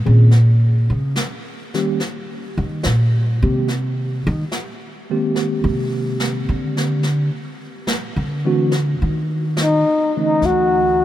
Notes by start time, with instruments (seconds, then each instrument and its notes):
0.05 upright bass A#2, tine electric piano D#3 A#3 C4 C#4 G#4
0.31 brush sweep, snare
0.90 upright bass C#3
1.16 snare
1.74 tine electric piano D#3 G3 A#3 C#4 G4, snare
2.00 brush sweep, snare
2.58 upright bass D#3
2.83 upright bass A#2, snare
3.42 upright bass C3, tine electric piano D#3 G#3 A#3 C4 G4
3.68 brush sweep, snare
4.27 upright bass D#3
4.52 snare
5.10 tine electric piano D#3 G#3 A#3 C4 G4
5.36 brush sweep, snare
5.64 upright bass C3
6.20 snare
6.49 upright bass D3
6.77 snare
7.03 brush sweep, snare
7.87 snare
8.16 upright bass D3
8.45 tine electric piano E3 A3 C4 D4 F#4
8.72 brush sweep, snare
9.02 upright bass D#3
9.57 snare
9.62 flugelhorn D#4
10.17 tine electric piano D3 E3 A3 C#4 D#4, flugelhorn D#4
10.41 upright bass D2, tine electric piano E3 A3 F#4, brush sweep, snare
10.46 flugelhorn F#4